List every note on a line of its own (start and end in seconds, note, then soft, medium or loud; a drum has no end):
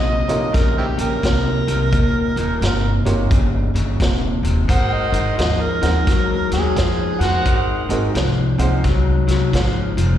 0.00 0.24 A#1 medium
0.00 0.25 D#2 medium
0.00 0.25 C3 medium
0.00 0.56 D#5 medium
0.28 0.51 A#1 medium
0.28 0.51 D#2 medium
0.28 0.52 C3 medium
0.28 0.52 D#4 medium
0.28 0.52 F4 medium
0.28 0.52 G4 medium
0.28 0.52 A#4 medium
0.28 0.51 C#5 medium
0.28 closed hi-hat medium
0.52 0.93 A#1 medium
0.52 0.93 D#2 medium
0.52 0.93 C#3 medium
0.52 0.77 A#4 medium
0.52 kick loud
0.52 snare soft
0.52 closed hi-hat medium
0.78 0.86 C4 medium
0.78 0.85 E4 medium
0.78 1.02 G4 medium
0.97 1.20 A#1 medium
0.97 1.20 D#2 medium
0.97 1.21 C#3 medium
0.97 3.04 A#4 medium
0.97 closed hi-hat medium
1.22 1.62 C2 medium
1.22 1.63 D#2 medium
1.22 1.63 C3 medium
1.22 kick medium
1.22 snare medium
1.22 closed hi-hat medium
1.67 1.89 C2 medium
1.67 1.90 D#2 medium
1.67 1.90 C3 medium
1.67 closed hi-hat medium
1.93 2.31 D#1 medium
1.93 2.32 D#2 medium
1.93 2.33 A#2 medium
1.93 kick loud
1.93 closed hi-hat medium
2.36 2.58 D#1 medium
2.36 2.60 D#2 medium
2.36 2.60 A#2 medium
2.36 closed hi-hat medium
2.61 3.00 G1 medium
2.61 3.02 D#2 medium
2.61 3.02 C3 medium
2.61 snare loud
2.61 closed hi-hat medium
3.05 3.27 G1 medium
3.05 3.28 D#2 medium
3.05 3.29 C3 medium
3.05 3.28 D#4 medium
3.05 3.28 F4 medium
3.05 3.29 G4 medium
3.05 3.29 A#4 medium
3.05 3.28 C#5 medium
3.05 closed hi-hat medium
3.31 3.69 G1 medium
3.31 3.71 D#2 medium
3.31 3.71 C#3 medium
3.31 kick loud
3.31 closed hi-hat medium
3.74 3.96 G1 medium
3.74 3.98 D#2 medium
3.74 3.98 C#3 medium
3.74 closed hi-hat medium
4.00 4.39 D#1 medium
4.00 4.40 D#2 medium
4.00 4.40 C3 medium
4.00 kick medium
4.00 snare loud
4.00 closed hi-hat medium
4.43 4.65 D#1 medium
4.43 4.66 D#2 medium
4.43 4.67 C3 medium
4.43 closed hi-hat medium
4.68 5.08 G#1 medium
4.68 5.08 G#2 medium
4.68 5.08 D#3 medium
4.68 5.56 F#4 medium
4.68 5.56 A#4 medium
4.68 5.56 C5 medium
4.68 4.94 F#5 medium
4.68 kick medium
4.68 closed hi-hat medium
4.93 5.37 D#5 medium
5.12 5.35 G#1 medium
5.12 5.35 G#2 medium
5.12 5.36 D#3 medium
5.12 closed hi-hat medium
5.36 5.77 D#2 medium
5.36 5.77 G#2 medium
5.36 5.78 F3 medium
5.36 5.63 D#5 medium
5.36 snare loud
5.36 closed hi-hat medium
5.61 6.51 A#4 medium
5.82 6.04 D#2 medium
5.82 6.05 G#2 medium
5.82 6.05 F3 medium
5.82 6.05 C4 medium
5.82 6.05 D#4 medium
5.82 6.05 G#4 medium
5.82 6.05 A#4 medium
5.82 6.05 F#5 medium
5.82 snare soft
5.82 closed hi-hat medium
6.07 6.46 D#2 medium
6.07 6.47 G#2 medium
6.07 6.48 F#3 medium
6.07 kick loud
6.07 snare soft
6.07 closed hi-hat medium
6.51 6.74 D#2 medium
6.51 6.74 G#2 medium
6.51 6.74 F#3 medium
6.51 7.21 G#4 medium
6.51 snare soft
6.51 closed hi-hat medium
6.76 7.15 F2 medium
6.76 7.17 G#2 medium
6.76 7.17 F3 medium
6.76 kick medium
6.76 snare medium
6.76 closed hi-hat medium
7.19 7.42 F2 medium
7.19 7.43 G#2 medium
7.19 7.43 F3 medium
7.19 7.59 F#4 medium
7.19 8.00 A#4 medium
7.19 8.00 C5 medium
7.19 7.99 F#5 medium
7.19 snare soft
7.19 closed hi-hat medium
7.45 7.84 G#1 medium
7.45 7.85 G#2 medium
7.45 7.85 D#3 medium
7.45 kick loud
7.45 closed hi-hat medium
7.89 8.12 G#1 medium
7.89 8.12 G#2 medium
7.89 8.12 D#3 medium
7.89 8.12 C4 medium
7.89 8.13 D#4 medium
7.89 8.13 F#4 medium
7.89 8.13 G#4 medium
7.89 8.13 A#4 medium
7.89 closed hi-hat medium
8.14 8.53 C2 medium
8.14 8.55 G#2 medium
8.14 8.55 F3 medium
8.14 snare medium
8.14 closed hi-hat medium
8.58 8.81 C2 medium
8.58 8.81 G#2 medium
8.58 8.82 F3 medium
8.58 8.81 C4 medium
8.58 8.82 D#4 medium
8.58 8.82 G#4 medium
8.58 8.82 C5 medium
8.58 8.82 F#5 medium
8.58 closed hi-hat medium
8.84 9.23 C2 medium
8.84 9.24 G#2 medium
8.84 9.24 F#3 medium
8.84 kick loud
8.84 snare soft
8.84 closed hi-hat medium
9.27 9.50 C2 medium
9.27 9.50 G#2 medium
9.27 9.51 F#3 medium
9.27 snare soft
9.27 closed hi-hat medium
9.53 9.92 G#1 medium
9.53 9.93 G#2 medium
9.53 9.93 F3 medium
9.53 kick medium
9.53 snare loud
9.53 closed hi-hat medium
9.97 10.18 F1 loud
9.97 10.18 G#2 medium
9.97 10.18 F3 medium
9.97 closed hi-hat medium